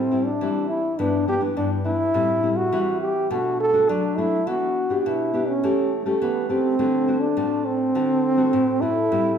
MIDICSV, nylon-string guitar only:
0, 0, Header, 1, 2, 480
1, 0, Start_track
1, 0, Tempo, 580271
1, 1778, Time_signature, 4, 2, 24, 8
1, 7761, End_track
2, 0, Start_track
2, 0, Title_t, "Nylon-string guitar"
2, 0, Program_c, 0, 24
2, 0, Note_on_c, 0, 45, 69
2, 0, Note_on_c, 0, 55, 55
2, 0, Note_on_c, 0, 60, 58
2, 0, Note_on_c, 0, 64, 71
2, 84, Note_off_c, 0, 55, 0
2, 85, Note_off_c, 0, 60, 0
2, 91, Note_off_c, 0, 64, 0
2, 93, Note_on_c, 0, 55, 52
2, 96, Note_on_c, 0, 60, 59
2, 101, Note_on_c, 0, 64, 65
2, 237, Note_off_c, 0, 55, 0
2, 237, Note_off_c, 0, 60, 0
2, 240, Note_off_c, 0, 64, 0
2, 315, Note_off_c, 0, 45, 0
2, 341, Note_on_c, 0, 52, 73
2, 345, Note_on_c, 0, 55, 54
2, 345, Note_on_c, 0, 60, 56
2, 349, Note_on_c, 0, 64, 65
2, 650, Note_off_c, 0, 55, 0
2, 651, Note_off_c, 0, 60, 0
2, 652, Note_off_c, 0, 64, 0
2, 796, Note_off_c, 0, 52, 0
2, 817, Note_on_c, 0, 43, 72
2, 820, Note_on_c, 0, 52, 52
2, 822, Note_on_c, 0, 59, 60
2, 828, Note_on_c, 0, 62, 65
2, 1020, Note_off_c, 0, 52, 0
2, 1021, Note_off_c, 0, 59, 0
2, 1024, Note_off_c, 0, 62, 0
2, 1052, Note_on_c, 0, 52, 59
2, 1058, Note_on_c, 0, 59, 65
2, 1060, Note_on_c, 0, 62, 65
2, 1137, Note_off_c, 0, 52, 0
2, 1138, Note_off_c, 0, 59, 0
2, 1140, Note_off_c, 0, 62, 0
2, 1163, Note_on_c, 0, 52, 60
2, 1166, Note_on_c, 0, 59, 60
2, 1171, Note_on_c, 0, 62, 72
2, 1274, Note_off_c, 0, 43, 0
2, 1296, Note_on_c, 0, 43, 71
2, 1492, Note_off_c, 0, 52, 0
2, 1493, Note_off_c, 0, 59, 0
2, 1496, Note_off_c, 0, 62, 0
2, 1528, Note_on_c, 0, 52, 59
2, 1531, Note_on_c, 0, 59, 59
2, 1535, Note_on_c, 0, 62, 63
2, 1687, Note_off_c, 0, 52, 0
2, 1688, Note_off_c, 0, 59, 0
2, 1691, Note_off_c, 0, 62, 0
2, 1753, Note_off_c, 0, 43, 0
2, 1772, Note_on_c, 0, 45, 71
2, 1775, Note_on_c, 0, 55, 55
2, 1778, Note_on_c, 0, 60, 65
2, 1783, Note_on_c, 0, 64, 65
2, 1977, Note_off_c, 0, 55, 0
2, 1980, Note_off_c, 0, 60, 0
2, 1980, Note_off_c, 0, 64, 0
2, 2010, Note_on_c, 0, 55, 57
2, 2015, Note_on_c, 0, 60, 57
2, 2016, Note_on_c, 0, 64, 66
2, 2216, Note_off_c, 0, 55, 0
2, 2217, Note_off_c, 0, 60, 0
2, 2218, Note_off_c, 0, 64, 0
2, 2231, Note_off_c, 0, 45, 0
2, 2254, Note_on_c, 0, 52, 72
2, 2256, Note_on_c, 0, 55, 58
2, 2259, Note_on_c, 0, 60, 56
2, 2262, Note_on_c, 0, 64, 68
2, 2698, Note_off_c, 0, 55, 0
2, 2700, Note_off_c, 0, 60, 0
2, 2701, Note_off_c, 0, 64, 0
2, 2712, Note_off_c, 0, 52, 0
2, 2734, Note_on_c, 0, 47, 72
2, 2736, Note_on_c, 0, 57, 56
2, 2738, Note_on_c, 0, 62, 55
2, 2741, Note_on_c, 0, 66, 67
2, 3058, Note_off_c, 0, 57, 0
2, 3059, Note_off_c, 0, 62, 0
2, 3060, Note_off_c, 0, 66, 0
2, 3084, Note_on_c, 0, 57, 54
2, 3088, Note_on_c, 0, 62, 62
2, 3094, Note_on_c, 0, 66, 72
2, 3192, Note_off_c, 0, 47, 0
2, 3220, Note_on_c, 0, 54, 73
2, 3413, Note_off_c, 0, 57, 0
2, 3415, Note_off_c, 0, 62, 0
2, 3416, Note_off_c, 0, 66, 0
2, 3456, Note_on_c, 0, 57, 66
2, 3461, Note_on_c, 0, 62, 64
2, 3463, Note_on_c, 0, 66, 64
2, 3612, Note_off_c, 0, 57, 0
2, 3613, Note_off_c, 0, 62, 0
2, 3615, Note_off_c, 0, 66, 0
2, 3675, Note_off_c, 0, 54, 0
2, 3697, Note_on_c, 0, 52, 76
2, 3701, Note_on_c, 0, 59, 52
2, 3701, Note_on_c, 0, 62, 58
2, 4020, Note_off_c, 0, 59, 0
2, 4021, Note_off_c, 0, 62, 0
2, 4053, Note_on_c, 0, 59, 61
2, 4055, Note_on_c, 0, 62, 57
2, 4061, Note_on_c, 0, 67, 68
2, 4153, Note_off_c, 0, 52, 0
2, 4186, Note_on_c, 0, 47, 74
2, 4377, Note_off_c, 0, 59, 0
2, 4378, Note_off_c, 0, 62, 0
2, 4380, Note_off_c, 0, 67, 0
2, 4413, Note_on_c, 0, 59, 60
2, 4417, Note_on_c, 0, 62, 51
2, 4420, Note_on_c, 0, 67, 67
2, 4557, Note_off_c, 0, 59, 0
2, 4558, Note_off_c, 0, 62, 0
2, 4560, Note_off_c, 0, 67, 0
2, 4638, Note_off_c, 0, 47, 0
2, 4661, Note_on_c, 0, 52, 71
2, 4663, Note_on_c, 0, 57, 59
2, 4665, Note_on_c, 0, 61, 55
2, 4670, Note_on_c, 0, 67, 68
2, 4981, Note_off_c, 0, 57, 0
2, 4983, Note_off_c, 0, 61, 0
2, 4985, Note_off_c, 0, 67, 0
2, 5010, Note_on_c, 0, 57, 62
2, 5014, Note_on_c, 0, 61, 64
2, 5018, Note_on_c, 0, 67, 67
2, 5116, Note_off_c, 0, 52, 0
2, 5142, Note_on_c, 0, 52, 75
2, 5336, Note_off_c, 0, 57, 0
2, 5338, Note_off_c, 0, 61, 0
2, 5339, Note_off_c, 0, 67, 0
2, 5371, Note_on_c, 0, 57, 65
2, 5377, Note_on_c, 0, 61, 65
2, 5377, Note_on_c, 0, 67, 67
2, 5576, Note_off_c, 0, 57, 0
2, 5577, Note_off_c, 0, 61, 0
2, 5579, Note_off_c, 0, 67, 0
2, 5596, Note_off_c, 0, 52, 0
2, 5617, Note_on_c, 0, 50, 77
2, 5618, Note_on_c, 0, 57, 58
2, 5619, Note_on_c, 0, 60, 62
2, 5622, Note_on_c, 0, 66, 62
2, 5819, Note_off_c, 0, 57, 0
2, 5821, Note_off_c, 0, 60, 0
2, 5822, Note_off_c, 0, 66, 0
2, 5853, Note_on_c, 0, 57, 57
2, 5856, Note_on_c, 0, 60, 60
2, 5860, Note_on_c, 0, 66, 61
2, 5997, Note_off_c, 0, 57, 0
2, 5999, Note_off_c, 0, 60, 0
2, 6000, Note_off_c, 0, 66, 0
2, 6074, Note_off_c, 0, 50, 0
2, 6094, Note_on_c, 0, 45, 74
2, 6097, Note_on_c, 0, 60, 56
2, 6098, Note_on_c, 0, 57, 57
2, 6103, Note_on_c, 0, 66, 62
2, 6540, Note_off_c, 0, 57, 0
2, 6541, Note_off_c, 0, 60, 0
2, 6542, Note_off_c, 0, 66, 0
2, 6553, Note_off_c, 0, 45, 0
2, 6577, Note_on_c, 0, 50, 68
2, 6580, Note_on_c, 0, 57, 62
2, 6582, Note_on_c, 0, 60, 60
2, 6586, Note_on_c, 0, 66, 64
2, 6804, Note_off_c, 0, 57, 0
2, 6806, Note_off_c, 0, 60, 0
2, 6807, Note_off_c, 0, 66, 0
2, 6924, Note_on_c, 0, 57, 58
2, 6928, Note_on_c, 0, 60, 61
2, 6933, Note_on_c, 0, 66, 70
2, 7035, Note_off_c, 0, 50, 0
2, 7056, Note_on_c, 0, 45, 74
2, 7254, Note_off_c, 0, 57, 0
2, 7257, Note_off_c, 0, 60, 0
2, 7258, Note_off_c, 0, 66, 0
2, 7292, Note_on_c, 0, 57, 69
2, 7298, Note_on_c, 0, 60, 62
2, 7300, Note_on_c, 0, 66, 71
2, 7452, Note_off_c, 0, 57, 0
2, 7452, Note_off_c, 0, 60, 0
2, 7455, Note_off_c, 0, 66, 0
2, 7515, Note_off_c, 0, 45, 0
2, 7541, Note_on_c, 0, 45, 74
2, 7541, Note_on_c, 0, 55, 59
2, 7543, Note_on_c, 0, 60, 61
2, 7547, Note_on_c, 0, 64, 64
2, 7742, Note_off_c, 0, 55, 0
2, 7744, Note_off_c, 0, 60, 0
2, 7745, Note_off_c, 0, 64, 0
2, 7761, Note_off_c, 0, 45, 0
2, 7761, End_track
0, 0, End_of_file